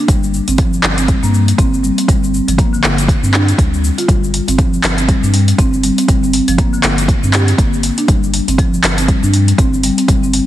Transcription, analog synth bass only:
0.08 G1
0.48 G1
0.83 G1
1.23 G2
1.58 G1
2.08 G1
2.48 G1
2.83 G1
3.23 G2
3.58 D2
4.08 G1
4.48 G1
4.83 G1
5.23 G2
5.58 G1
6.08 G1
6.48 G1
6.83 G1
7.23 G2
7.58 G1
8.08 G1
8.48 G1
8.83 G1
9.23 G2
9.58 G1
10.08 G1

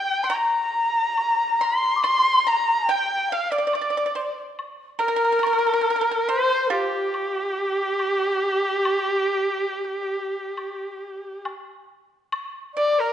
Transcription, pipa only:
0.24 C6
0.30 A#5
1.61 C6
2.04 C6
2.47 A#5
2.89 G5
3.32 F5
3.52 D5
3.58 D5
3.67 D5
3.75 D5
3.81 D5
3.90 D5
3.97 D5
4.06 D5
4.15 C5
4.99 A#4
5.08 A#4
5.16 A#4
5.25 A#4
5.32 A#4
5.39 A#4
5.47 A#4
5.53 A#4
5.59 A#4
5.67 A#4
5.74 A#4
5.81 A#4
5.90 A#4
5.96 A#4
6.01 A#4
6.11 A#4
6.29 C5
6.70 F4
7.55 F#4
8.08 G4
12.77 D5

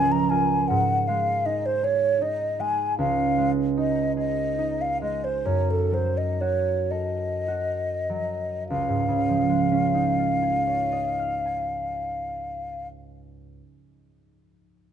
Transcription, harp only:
Already playing: C#2 F3 F4 A#4
0.31 F4 A#4
0.70 G#2
1.08 G#3
1.46 D#4
1.83 G#4
2.22 D#4
2.59 G#3
2.99 C#2
3.38 G#3
3.77 D#4
4.17 G#4
4.59 D#4
5.02 G#3
5.45 F#2
5.92 F#3
6.41 F#4
6.92 A4
7.48 F#4
8.10 F#3
8.70 C#2
8.89 G#2
9.08 C#3
9.29 F3
9.49 G#3
9.72 C#4
9.94 D#4
10.18 F4
10.42 G#4
10.67 C#5
10.92 D#5
11.19 F5
11.46 G#5

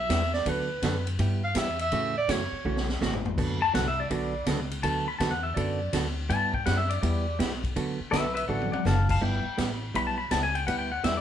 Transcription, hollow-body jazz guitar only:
0.10 G3 B3 E4 G4
0.46 D3 F#3 B3 F#4 A4
0.84 D3 F#3 B3 F#4 A4
1.19 G3 B3 E4 G4
1.56 G3 B3 E4 G4
1.92 C#3 E3 A3 C#4 F#4
2.29 C#3 E3 A3 C#4 F#4
2.65 C#3 E3 A3 C#4 F#4
3.01 C#3 E3 A3 C#4 F#4
3.38 D3 F#3 B3 F#4 A4
3.74 D3 F#3 B3 F#4 A4
4.11 D3 F#3 B3 F#4 A4
4.46 D3 F#3 B3 F#4 A4
4.84 D3 F#3 B3 F#4 A4
5.20 D3 F#3 B3 F#4 A4
5.56 D3 F#3 B3 F#4 A4
5.93 D3 F#3 B3 F#4 A4
6.29 G3 B3 E4 G4
6.66 G3 B3 E4 G4
7.03 G3 B3 E4 G4
7.39 G3 B3 E4 G4
7.76 D3 F#3 B3 F#4 A4
8.13 D3 F#3 B3 F#4 A4
8.49 D3 F#3 B3 F#4 A4
8.86 D3 F#3 B3 F#4 A4
9.21 G3 B3 E4 G4
9.58 G3 B3 E4 G4
9.94 G3 B3 E4 G4
10.31 G3 B3 E4 G4
10.68 G3 B3 E4 G4
11.04 G3 B3 E4 G4

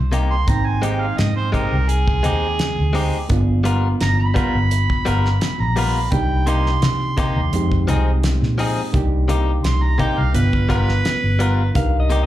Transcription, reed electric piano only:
Already playing: A#3 D4 D#4 G4
0.47 A#3 C4 D#4 G5
3.29 A#3 B3 D4 F4
6.11 A#3 D4 D#4 G4
7.53 G#3 C4 D#4 G4
8.93 A#3 D4 D#4 G4
10.33 B3 D4 F4 B4
11.74 D4 D#4 G4 A#4

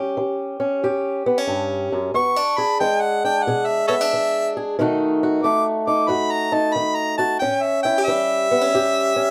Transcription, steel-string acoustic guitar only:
Already playing: A2 G3 C#4 G4
0.17 E3
0.60 C#4
0.83 E2 G4
1.26 B3
1.38 C#4
1.47 G2
1.92 F#2
2.14 E2 B3
2.36 D4
2.58 G#4
2.81 E3 G#3
3.24 D4
3.47 B2 G#4
3.89 B3
4.01 D4
4.13 E3
4.57 G#4
4.79 B2 D#3 A3 D#4 F#4
5.23 F#4
5.44 D#3 A3
5.87 D#4
6.08 F#2 F#4
6.52 D#4
6.76 D#3
7.19 F#4
7.42 A2 C#4
7.85 E4
7.98 G4
8.08 E3 G3
8.51 B3
8.61 C#4
8.74 E2 G4
9.16 C#4

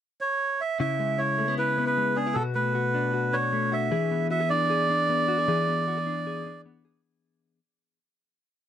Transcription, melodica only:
0.21 C#5
0.61 E5
0.80 E5
1.18 C#5
1.58 B4
1.86 B4
2.16 G#4
2.34 A4
2.55 B4
3.33 C#5
3.73 E5
4.31 E5
4.49 D5

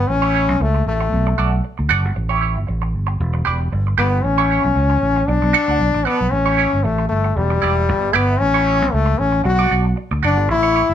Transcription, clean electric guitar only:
0.07 muted clean electric guitar stroke
0.22 E4 G4 C#5
0.34 E4 G4 C#5
0.48 muted clean electric guitar stroke
0.60 muted clean electric guitar stroke
0.75 muted clean electric guitar stroke
1.01 muted clean electric guitar stroke
1.27 muted clean electric guitar stroke
1.38 F#4 A4 D5
1.52 muted clean electric guitar stroke
1.63 muted clean electric guitar stroke
1.78 muted clean electric guitar stroke
1.89 F#4 A4 D5
2.04 muted clean electric guitar stroke
2.15 muted clean electric guitar stroke
2.29 E4 G4 C#5
2.41 E4 G4 C#5
2.56 muted clean electric guitar stroke
2.67 muted clean electric guitar stroke
2.82 muted clean electric guitar stroke
3.07 muted clean electric guitar stroke
3.34 muted clean electric guitar stroke
3.45 G4 B4 D5
3.61 muted clean electric guitar stroke
3.72 muted clean electric guitar stroke
3.87 muted clean electric guitar stroke
3.98 G4 B4 D5
4.13 muted clean electric guitar stroke
4.24 muted clean electric guitar stroke
4.38 E4 G4 C#5
4.50 E4 G4 C#5
4.64 muted clean electric guitar stroke
4.75 muted clean electric guitar stroke
4.90 muted clean electric guitar stroke
5.16 muted clean electric guitar stroke
5.28 muted clean electric guitar stroke
5.42 muted clean electric guitar stroke
5.53 F#4 A4 D5
5.69 F#4 A4 D5
5.79 muted clean electric guitar stroke
5.94 muted clean electric guitar stroke
6.05 F#4 A4 D5
6.20 muted clean electric guitar stroke
6.31 muted clean electric guitar stroke
6.46 E4 G4 C#5
6.57 E4 G4 C#5
6.72 muted clean electric guitar stroke
6.84 muted clean electric guitar stroke
6.98 muted clean electric guitar stroke
7.24 muted clean electric guitar stroke
7.50 muted clean electric guitar stroke
7.62 E4 G4 D5
7.77 muted clean electric guitar stroke
7.88 muted clean electric guitar stroke
8.02 muted clean electric guitar stroke
8.13 E4 G4 D5
8.29 muted clean electric guitar stroke
8.40 muted clean electric guitar stroke
8.54 E4 G4 C#5
8.66 E4 G4 C#5
8.80 muted clean electric guitar stroke
8.91 muted clean electric guitar stroke
9.06 muted clean electric guitar stroke
9.32 muted clean electric guitar stroke
9.44 muted clean electric guitar stroke
9.59 F#4 A4 D5
9.70 F#4 A4 D5
9.85 muted clean electric guitar stroke
9.96 muted clean electric guitar stroke
10.11 muted clean electric guitar stroke
10.23 F#4 A4 D5
10.38 muted clean electric guitar stroke
10.49 muted clean electric guitar stroke
10.63 E4 G4 C#5
10.74 E4 G4 C#5
10.89 muted clean electric guitar stroke

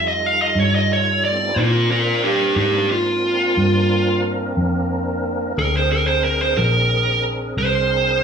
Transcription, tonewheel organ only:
Already playing: G3 D#4 F4 A4
1.26 G3 A3
1.31 B3 C4
1.37 D4 E4
1.43 F4 G4
1.48 A4 B4
1.53 A#3 C4 D4 A#4 C5
5.56 C4 D4 G#4 A#4

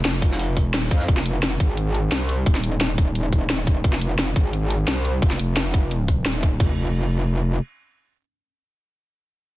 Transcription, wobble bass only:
0.05 F1
0.65 E1
0.91 F2
1.08 F1
1.60 G#1
2.12 C2
2.46 D#1
3.84 F1
4.36 G#1
4.88 C2
5.22 F1
5.39 F1
6.26 D#1
6.60 F1

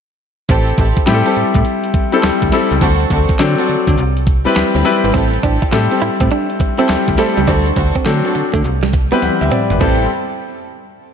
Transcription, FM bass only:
0.49 A1
0.78 A1
1.08 A2
1.37 A2
1.55 A2
2.24 D2
2.42 D2
2.72 C#2
2.82 D2
3.11 D2
3.40 D3
3.69 D3
3.88 D3
3.98 C2
4.57 D2
4.75 D2
5.04 G#1
5.15 A1
5.44 A1
5.73 A2
6.02 A2
6.21 A2
6.90 D2
7.08 D2
7.38 C#2
7.48 D2
7.77 D2
8.07 D3
8.36 D3
8.54 D3
8.65 C2
9.23 D2
9.42 D2
9.71 G#1
9.81 A1

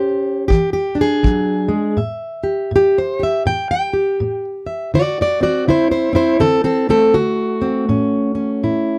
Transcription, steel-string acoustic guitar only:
Already playing: A2 C#4 G4 C5
0.48 E3 G4
0.73 G4
0.95 D4
1.01 G#4
1.23 F#3
1.68 G#3
1.97 A2 E5
2.44 G4
2.71 A2
2.76 G4
2.98 C5
3.20 G4 E5
3.46 A2 G5
3.71 G5
3.93 G4
4.20 A2
4.67 E5
4.94 D3 F#4 D5
5.21 F#4 D5
5.41 C4 F#4 D5
5.68 D3 E4 C5
5.91 E4 C5
6.13 C4 E4 C5
6.40 D3 C4 A4
6.64 C4 A4
6.89 A3 C4 A4
7.14 D3 F#4
7.62 C4
7.89 A2 C#4
8.35 C#4
8.63 A2 E4

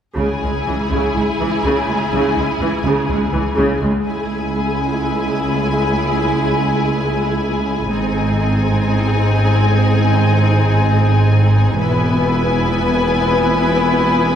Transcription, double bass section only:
0.17 C#2
0.43 C#2
0.67 C#2
0.91 C#2
1.15 C#2
1.40 C#2
1.64 C#2
1.88 C#2
2.12 C#2
2.37 C#2
2.60 C#2
2.84 C#2
3.08 C#2
3.33 C#2
3.57 C#2
3.81 C#2
4.05 C#2
7.92 G#1
11.79 E1

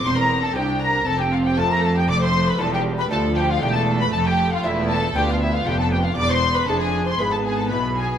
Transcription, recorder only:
0.05 C6
0.19 A#5
0.43 A5
0.56 G5
0.82 A#5
1.07 A5
1.21 G5
1.34 F5
1.46 G5
1.57 A5
1.71 A#5
1.84 A5
1.96 G5
2.08 D6
2.23 C6
2.48 B5
2.60 A5
2.74 G5
2.98 B5
3.12 A5
3.37 G5
3.49 F5
3.62 G5
3.74 A5
4.01 B5
4.14 A5
4.26 G5
4.51 F5
4.63 E5
4.89 A5
5.15 G5
5.29 F5
5.41 E5
5.53 F5
5.67 G5
5.78 A5
5.91 G5
6.03 F5
6.18 D6
6.31 C6
6.56 B5
6.69 A5
6.84 G#5
7.09 C6
7.22 B5
7.35 A5
7.49 G#5
7.60 A5
7.74 B5
8.01 G#5

